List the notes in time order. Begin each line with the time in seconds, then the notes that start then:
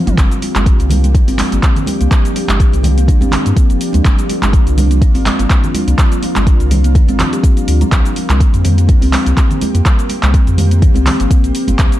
Already playing: A#3 C4 F4
0.07 G1 D4, closed hi-hat, mid tom, high conga, cabasa
0.18 G1 F3 G3 A#3 D4 G4, kick, clap, closed hi-hat, cabasa
0.31 closed hi-hat, cabasa
0.42 open hi-hat, muted conga, cabasa
0.55 G1, clap, closed hi-hat, high conga, cabasa
0.66 kick, closed hi-hat, cabasa
0.79 C2 D3, closed hi-hat, muted conga, cabasa
0.89 G3, open hi-hat, high conga, low conga, cabasa
1.04 A#3, closed hi-hat, cabasa
1.15 D4, kick, closed hi-hat, cabasa
1.28 G1 C4, open hi-hat, muted conga, cabasa
1.38 F3, clap, open hi-hat, high conga, cabasa
1.52 G1 A#3, closed hi-hat, cabasa
1.63 kick, clap, closed hi-hat, muted conga, high conga, cabasa
1.76 closed hi-hat, low conga, cabasa
1.86 open hi-hat, high conga, cabasa
2.01 C2 A#3, closed hi-hat, muted conga, cabasa
2.11 G3, kick, clap, closed hi-hat, cabasa
2.25 closed hi-hat, cabasa
2.36 open hi-hat, muted conga, cabasa
2.48 G1, clap, closed hi-hat, high conga, cabasa
2.60 kick, closed hi-hat, cabasa
2.72 C2 D3, closed hi-hat, muted conga, cabasa
2.83 G3, open hi-hat, high conga, low conga, cabasa
2.97 A#3, closed hi-hat, cabasa
3.08 D4, kick, closed hi-hat, low conga, cabasa
3.21 G1 C4, closed hi-hat, muted conga, high conga, cabasa
3.31 F3, clap, open hi-hat, high conga, low conga, cabasa
3.45 G2 A#3, closed hi-hat, cabasa
3.57 kick, closed hi-hat, muted conga, cabasa
3.70 F1, closed hi-hat, cabasa
3.81 open hi-hat, cabasa
3.93 D2 A#3, closed hi-hat, muted conga, high conga, cabasa
4.05 G1 G3 F4, kick, clap, closed hi-hat, cabasa
4.18 closed hi-hat, cabasa
4.29 open hi-hat, muted conga, cabasa
4.42 G1, clap, closed hi-hat, high conga, cabasa
4.53 kick, closed hi-hat, cabasa
4.66 C2 D3, closed hi-hat, muted conga, cabasa
4.77 G3, open hi-hat, high conga, low conga, cabasa
4.91 A#3, closed hi-hat, cabasa
5.01 D4, kick, closed hi-hat, cabasa
5.14 G1 C4, open hi-hat, muted conga, cabasa
5.26 F3, clap, open hi-hat, high conga, cabasa
5.39 G1 A#3, closed hi-hat, cabasa
5.49 kick, clap, closed hi-hat, muted conga, high conga, cabasa
5.64 closed hi-hat, low conga, cabasa
5.74 open hi-hat, high conga, cabasa
5.87 C2 A#3, closed hi-hat, muted conga, cabasa
5.98 G3, kick, clap, closed hi-hat, cabasa
6.12 closed hi-hat, cabasa
6.23 open hi-hat, muted conga, cabasa
6.35 G1, clap, closed hi-hat, high conga, cabasa
6.47 kick, closed hi-hat, cabasa
6.60 C2 D3, closed hi-hat, muted conga, cabasa
6.71 G3, open hi-hat, high conga, low conga, cabasa
6.84 A#3, closed hi-hat, cabasa
6.95 D4, kick, closed hi-hat, low conga, cabasa
7.08 G1 C4, closed hi-hat, muted conga, high conga, cabasa
7.19 G3, clap, open hi-hat, high conga, low conga, cabasa
7.33 G4, closed hi-hat, cabasa
7.44 kick, closed hi-hat, muted conga, cabasa
7.57 G3, closed hi-hat, cabasa
7.68 D2, open hi-hat, cabasa
7.81 F3, closed hi-hat, muted conga, high conga, cabasa
7.92 C2 G3 C4 G4, kick, clap, closed hi-hat, cabasa
8.05 closed hi-hat, cabasa
8.16 open hi-hat, muted conga, cabasa
8.29 C2, clap, closed hi-hat, high conga, cabasa
8.40 kick, closed hi-hat, cabasa
8.53 F2 D3, closed hi-hat, muted conga, cabasa
8.64 G3, open hi-hat, high conga, low conga, cabasa
8.77 A#3, closed hi-hat, cabasa
8.88 D4, kick, closed hi-hat, cabasa
9.01 C2 C4, open hi-hat, muted conga, cabasa
9.13 F3, clap, open hi-hat, high conga, cabasa
9.26 C2 A#3, closed hi-hat, cabasa
9.37 kick, clap, closed hi-hat, muted conga, high conga, cabasa
9.51 closed hi-hat, low conga, cabasa
9.61 open hi-hat, high conga, cabasa
9.74 F2 A#3, closed hi-hat, muted conga, cabasa
9.85 G3, kick, clap, closed hi-hat, cabasa
9.99 closed hi-hat, cabasa
10.09 open hi-hat, muted conga, cabasa
10.23 C2, clap, closed hi-hat, high conga, cabasa
10.34 kick, closed hi-hat, cabasa
10.47 F2 D3, closed hi-hat, muted conga, cabasa
10.58 G3, open hi-hat, high conga, low conga, cabasa
10.71 A#3, closed hi-hat, cabasa
10.82 D4, kick, closed hi-hat, low conga, cabasa
10.94 C2 C4, closed hi-hat, muted conga, high conga, cabasa
11.06 F3, clap, open hi-hat, high conga, low conga, cabasa
11.20 G1 A#3, closed hi-hat, cabasa
11.31 kick, closed hi-hat, cabasa
11.44 A#1, closed hi-hat, cabasa
11.55 open hi-hat, cabasa
11.68 G1 A#3, closed hi-hat, muted conga, high conga, cabasa
11.79 C2 G3, kick, clap, closed hi-hat, cabasa
11.92 closed hi-hat, cabasa